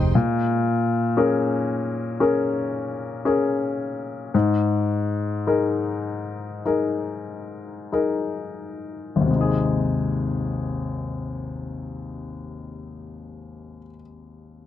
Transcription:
Already playing: fretless electric bass F1, grand piano G#3 D#4 C5, string section G#3 D#5 G5 C6, steel-string acoustic guitar G#3 C4 D#4 G4
0.15 grand piano A#2
1.17 grand piano C#4 G#4 A#4
2.20 grand piano C#4 G#4 A#4
3.25 grand piano C#4 G#4 A#4
4.34 grand piano G#2
5.47 grand piano D#4 G#4 A#4
6.65 grand piano D#4 G#4 A#4
7.92 grand piano D#4 G#4 A#4
9.16 grand piano G#1
9.21 grand piano D#2
9.26 grand piano C3
9.31 grand piano G#3
9.36 grand piano D#4
9.41 grand piano G#4

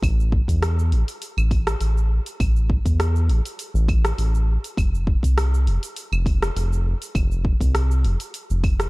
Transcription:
0.02 analog synth bass A1, kick, open hi-hat, cabasa, claves
0.20 cabasa
0.32 kick
0.48 analog synth bass E2, kick, open hi-hat, cabasa
0.62 cross-stick, open hi-hat, cabasa
0.79 cabasa
0.92 analog synth bass A1, open hi-hat
1.08 open hi-hat, cabasa
1.22 open hi-hat, cabasa
1.37 analog synth bass A1, cabasa, claves
1.51 kick, open hi-hat
1.67 cross-stick, open hi-hat, cabasa
1.80 analog synth bass A1, open hi-hat, cabasa
1.97 cabasa
2.26 open hi-hat, cabasa
2.40 analog synth bass A1, kick, open hi-hat, cabasa, claves
2.56 cabasa
2.70 kick
2.85 analog synth bass E2, kick, open hi-hat, cabasa
3.00 cross-stick, open hi-hat, cabasa
3.16 cabasa
3.28 analog synth bass A1, open hi-hat
3.45 open hi-hat, cabasa
3.59 open hi-hat, cabasa
3.74 analog synth bass A1, cabasa
3.88 kick, open hi-hat, claves
4.05 cross-stick, open hi-hat, cabasa
4.18 analog synth bass A1, open hi-hat, cabasa
4.35 cabasa
4.64 open hi-hat, cabasa
4.77 analog synth bass F1, kick, open hi-hat, cabasa, claves
4.95 cabasa
5.07 kick
5.23 analog synth bass C2, kick, open hi-hat, cabasa
5.38 cross-stick, open hi-hat, cabasa
5.54 cabasa
5.66 analog synth bass F1, open hi-hat
5.83 open hi-hat, cabasa
5.96 open hi-hat, cabasa
6.12 analog synth bass F1, cabasa, claves
6.26 kick, open hi-hat
6.43 cross-stick, open hi-hat, cabasa
6.56 analog synth bass F1, open hi-hat, cabasa
6.73 cabasa
7.02 open hi-hat, cabasa
7.15 analog synth bass F1, kick, open hi-hat, cabasa, claves
7.32 cabasa
7.45 kick
7.60 analog synth bass C2, kick, open hi-hat, cabasa
7.75 cross-stick, open hi-hat, cabasa
7.91 cabasa
8.04 analog synth bass F1, open hi-hat
8.20 open hi-hat, cabasa
8.34 open hi-hat, cabasa
8.50 analog synth bass F1, cabasa
8.64 kick, open hi-hat, claves
8.80 cross-stick, open hi-hat, cabasa

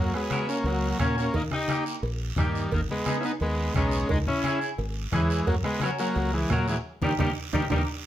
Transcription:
Already playing: fingered electric bass F#2, tenor saxophone F#3, transistor combo organ A#3
0.00 transistor combo organ F#3
0.13 tenor saxophone F#3, transistor combo organ G#3 B3, bombo rim
0.31 clean electric guitar C#4 F#4 A#4, bombo rim, high conga, short guiro
0.48 tenor saxophone A#3, transistor combo organ A#3 C#4, short guiro
0.64 fingered electric bass C#2, tenor saxophone F#3, transistor combo organ F#3 A#3, cowbell, long guiro
0.99 fingered electric bass A#2, tenor saxophone A#3, transistor combo organ A#3 C#4, clean electric guitar C#4 F#4 C#5, bombo low, bombo rim, high conga, short guiro
1.18 transistor combo organ A#3 C#4, tenor saxophone A#3, short guiro
1.34 fingered electric bass D#2, transistor combo organ A#3 D#4, tenor saxophone A#3, bombo low, cowbell, long guiro
1.51 transistor combo organ D#4 G4, tenor saxophone D#4, bombo rim, high conga
1.68 clean electric guitar A#3 D#4 G4, bombo rim, high conga, short guiro
1.86 short guiro
2.03 fingered electric bass A#1, cowbell, long guiro
2.36 fingered electric bass G2, tenor saxophone D#3, transistor combo organ D#3 G3, clean electric guitar A#3 D#4 G4, bombo low, bombo rim, high conga, low conga, short guiro
2.55 short guiro
2.71 fingered electric bass G#1, tenor saxophone D#3, transistor combo organ D#3 A#3, bombo low, cowbell, long guiro
2.89 transistor combo organ G#3 B3, tenor saxophone G#3, high conga
3.06 clean electric guitar B3 D#4 G#4, bombo rim, high conga, short guiro
3.20 transistor combo organ B3 E4, tenor saxophone C#4, short guiro
3.25 tenor saxophone B3, transistor combo organ D#4
3.40 fingered electric bass D#2, tenor saxophone G#3, transistor combo organ G#3 B3, cowbell, long guiro
3.74 fingered electric bass B1, transistor combo organ G#3 C#4, tenor saxophone G#3, clean electric guitar B3 D#4 A#4, bombo low, bombo rim, high conga, short guiro
3.91 short guiro
4.09 fingered electric bass C#2, tenor saxophone G#3, transistor combo organ G#3 D#4, bombo low, cowbell, long guiro
4.27 tenor saxophone C#4, transistor combo organ C#4 E4, high conga, low conga
4.44 clean electric guitar C#4 E4 G#4, bombo rim, high conga, short guiro
4.61 short guiro
4.78 fingered electric bass G#1, cowbell, long guiro
5.12 fingered electric bass E2, tenor saxophone E3, transistor combo organ E3 G#3, clean electric guitar C#4 E4 G#4, bombo low, bombo rim, high conga, low conga, short guiro
5.30 short guiro
5.47 fingered electric bass F#2, tenor saxophone F#3, transistor combo organ F#3 A#3, bombo low, cowbell, long guiro
5.63 tenor saxophone G#3, transistor combo organ G#3 B3, bombo rim, high conga
5.80 transistor combo organ F#3 B3, tenor saxophone F#3, clean electric guitar C#4 F#4 A#4, bombo rim, high conga, short guiro
5.99 tenor saxophone F#3, transistor combo organ F#3 A#3, short guiro
6.16 fingered electric bass C#2, cowbell, long guiro
6.33 tenor saxophone E3, transistor combo organ E3 G#3
6.50 fingered electric bass A#2, transistor combo organ F#3 A#3, tenor saxophone F#3, clean electric guitar C#4 F#4 A#4, bombo low, bombo rim, high conga, low timbale, short guiro
6.68 transistor combo organ E3 G#3, tenor saxophone E3, short guiro
7.02 fingered electric bass D#2, transistor combo organ D#3 G3 A#3, tenor saxophone G3, clean electric guitar D#4 G4 A#4, bombo low, high conga, high timbale, long guiro
7.19 fingered electric bass D#2, transistor combo organ D#3 G3 A#3, tenor saxophone G3, clean electric guitar D#4 G4 A#4, bombo low, high conga, high timbale, long guiro
7.53 fingered electric bass D#2, transistor combo organ D#3 G3 A#3, tenor saxophone G3, clean electric guitar D#4 G4 A#4, bombo low, high conga, high timbale, long guiro
7.70 fingered electric bass D#2, transistor combo organ D#3 G3 A#3, tenor saxophone G3, clean electric guitar D#4 G4 A#4, bombo low, high conga, high timbale, long guiro

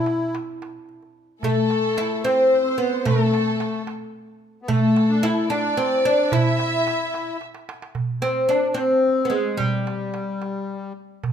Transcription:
Already playing: accordion E4, oud E4
0.06 darbuka tek
0.35 darbuka tek
0.62 darbuka tek
0.89 darbuka ka
1.02 darbuka ka
1.42 accordion A3, oud A3, violin section A4, darbuka dum
1.70 darbuka tek
1.97 oud E4, darbuka tek
2.24 accordion C4, oud C4, violin section C5, darbuka tek
2.64 accordion C4
2.78 oud B3, accordion B3
3.05 accordion A3, oud A3, violin section A4, darbuka dum
3.34 darbuka tek
3.60 darbuka tek
3.87 darbuka tek
4.62 accordion B3
4.68 oud A3, accordion A3, violin section A4, darbuka dum
4.96 darbuka tek
5.10 accordion D4
5.23 oud E4, accordion E4, darbuka tek
5.50 oud D4, accordion D4, violin section D5, darbuka tek
5.77 oud C4, accordion C4
6.04 accordion D4, oud D4
6.32 accordion E4, oud E4, violin section E5, darbuka dum
6.59 darbuka tek
6.87 darbuka tek
7.14 darbuka tek
7.41 darbuka tek
7.55 darbuka ka
7.69 darbuka tek
7.82 darbuka ka
7.95 darbuka dum
8.21 accordion C4, oud C4, darbuka tek
8.49 oud D4, accordion D4, darbuka tek
8.70 accordion D4
8.74 oud C4, accordion C4, darbuka tek
9.25 oud B3
9.30 oud G#3, accordion G#3
9.57 oud G3, accordion G3, darbuka dum
9.87 darbuka tek
10.14 darbuka tek
10.42 darbuka tek
11.23 darbuka dum

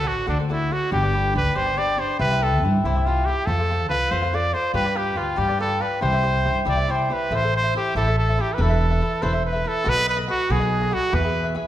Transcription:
0.04 upright bass A1, cavaquinho F#4 A4 C5 D5, trumpet F#4
0.27 upright bass D2, trumpet D4, cavaquinho F#4 A4 C5 D5
0.39 cavaquinho A4 C5 D5
0.49 trumpet E4, cavaquinho F#4 A4 C5 D5
0.71 cavaquinho F#4 A4 C5 D5, trumpet F#4
0.91 upright bass G1, cavaquinho D4 G4 B4 D5, trumpet G4
1.02 cavaquinho G4 B4 D5
1.13 cavaquinho D4 G4 B4 D5
1.34 upright bass D2, cavaquinho D4 G4 B4 D5, trumpet B4
1.55 upright bass G1, cavaquinho D4 G4 B4 D5, trumpet C5
1.66 cavaquinho G4 B4 D5
1.76 cavaquinho D4 G4 B4 D5, trumpet D5
1.97 cavaquinho D4 G4 B4 D5, trumpet C5
2.19 upright bass C2, cavaquinho E4 G4 C5 E5, trumpet B4
2.31 cavaquinho G4 C5 E5
2.42 cavaquinho E4 G4 C5 E5, trumpet A4
2.63 upright bass G2, cavaquinho E4 G4 C5 E5
2.84 upright bass C2, trumpet E4, cavaquinho E4 G4 C5 E5
2.95 cavaquinho G4 C5 E5
3.06 cavaquinho E4 G4 C5 E5, trumpet F4
3.26 cavaquinho E4 G4 C5 E5, trumpet G4
3.46 upright bass F2, cavaquinho F4 A4 C5 F5, trumpet A4
3.59 cavaquinho A4 C5 F5
3.69 cavaquinho F4 A4 C5 F5
3.89 upright bass C2, cavaquinho F4 A4 C5 F5, trumpet B4
4.11 upright bass F2, cavaquinho F4 A4 C5 F5, trumpet C5
4.22 cavaquinho A4 C5 F5
4.33 cavaquinho F4 A4 C5 F5, trumpet D5
4.54 cavaquinho F4 A4 C5 F5, trumpet C5
4.74 upright bass G2, cavaquinho F4 G4 B4 D5, trumpet B4
4.85 cavaquinho G4 B4 D5
4.95 cavaquinho F4 G4 B4 D5, trumpet G4
5.16 upright bass D2, cavaquinho F4 G4 B4 D5, trumpet F4
5.36 upright bass G2, cavaquinho F4 G4 B4 D5, trumpet G4
5.48 cavaquinho G4 B4 D5
5.58 cavaquinho F4 G4 B4 D5, trumpet A4
5.80 cavaquinho F4 G4 B4 D5, trumpet B4
6.01 upright bass C2, cavaquinho E4 G4 C5 E5, trumpet C5
6.12 cavaquinho G4 C5 E5
6.23 cavaquinho E4 G4 C5 E5
6.44 upright bass G2, cavaquinho E4 G4 C5 E5
6.65 upright bass C2, cavaquinho E4 G4 C5 E5, trumpet D5
6.77 cavaquinho G4 C5 E5
6.88 cavaquinho E4 G4 C5 E5, trumpet C5
7.10 cavaquinho E4 G4 C5 E5, trumpet B4
7.31 upright bass A1, cavaquinho E4 A4 C5 E5
7.35 trumpet C5
7.42 cavaquinho A4 C5 E5
7.56 trumpet C5
7.63 cavaquinho A4 C5 E5
7.75 cavaquinho E4 A4 C5 E5, trumpet G4
7.95 upright bass A1, cavaquinho E4 A4 C5 E5, trumpet A4
8.07 cavaquinho A4 C5 E5
8.19 trumpet A4
8.29 cavaquinho A4 C5 E5
8.38 cavaquinho E4 A4 C5 E5, trumpet G4
8.54 trumpet B4
8.58 upright bass E1, cavaquinho E4 A4 B4 E5, trumpet A4
8.69 cavaquinho A4 B4 E5
8.91 cavaquinho A4 B4 E5
9.01 cavaquinho E4 A4 B4 E5
9.22 upright bass E1, cavaquinho E4 A4 B4 E5, trumpet C5
9.33 cavaquinho A4 B4 E5
9.46 trumpet B4
9.52 cavaquinho A4 B4 E5
9.64 cavaquinho E4 A4 B4 E5, trumpet A4
9.84 upright bass B1, cavaquinho F#4 A4 B4 D#5
9.89 trumpet B4
9.97 cavaquinho A4 B4 D#5
10.09 trumpet B4
10.16 cavaquinho A4 B4 D#5
10.28 cavaquinho F#4 A4 B4 D#5, trumpet F#4
10.49 upright bass B1, cavaquinho F#4 A4 B4 D#5, trumpet G#4
10.60 cavaquinho A4 B4 D#5
10.82 cavaquinho A4 B4 D#5
10.91 cavaquinho F#4 A4 B4 D#5, trumpet F#4
11.12 upright bass E2, cavaquinho E4 G#4 B4 E5, trumpet B4
11.23 cavaquinho G#4 B4 E5
11.44 cavaquinho G#4 B4 E5
11.54 cavaquinho E4 G#4 B4 E5

